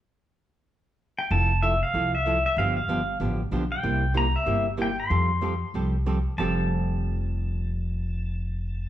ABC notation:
X:1
M:4/4
L:1/8
Q:"Swing" 1/4=189
K:F
V:1 name="Pedal steel guitar"
z6 z g | a2 e f2 e2 e | f f3 z3 g- | g2 b e2 z g c'- |
c'4- c' z3 | a8- | a8 |]
V:2 name="Hollow-body jazz guitar"
z8 | [F,A,EA] z [F,A,EA] z [F,A,EA] z [F,A,EA] z | [D,F,=B,DG] z [D,F,B,DG] z [D,F,B,DG] z [D,F,B,DG] z | [C,G,B,EG] z [C,G,B,EG] z [C,G,B,EG] z [C,G,B,EG] z |
[F,G,CGA] z [F,G,CGA] z [F,G,CGA] z [F,G,CGA] z | [F,G,CGA]8- | [F,G,CGA]8 |]
V:3 name="Upright bass" clef=bass
z8 | F,,,4 C,,4 | G,,,2 G,,,2 A,,,2 =B,,,2 | C,,4 G,,,4 |
F,,4 C,,4 | F,,,8- | F,,,8 |]